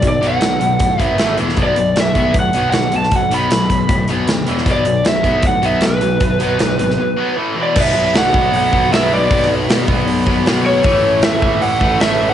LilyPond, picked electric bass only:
\new Staff \with { instrumentName = "Picked electric bass" } { \clef bass \time 4/4 \key b \minor \tempo 4 = 155 b,,8 b,,8 b,,8 b,,8 a,8 gis,,8 a,,8 e,,8 | b,,8 b,,8 b,,8 b,,8 a,8 b,,8 b,,8 b,,8 | b,,8 b,,8 b,,8 b,,8 a,8 b,,8 d,8 e,,8 | b,,8 b,,8 b,,8 b,,8 a,8 b,,8 b,,8 b,,8 |
b,,8 b,,8 b,,8 gis,,8 r2 | b,,8 b,,8 b,,4 b,,8 b,,8 b,,4 | b,,8 b,,8 b,8 b,,8 b,,8 b,,8 b,,4 | a,,8 a,,8 a,,4 a,,8 a,,8 a,,4 | }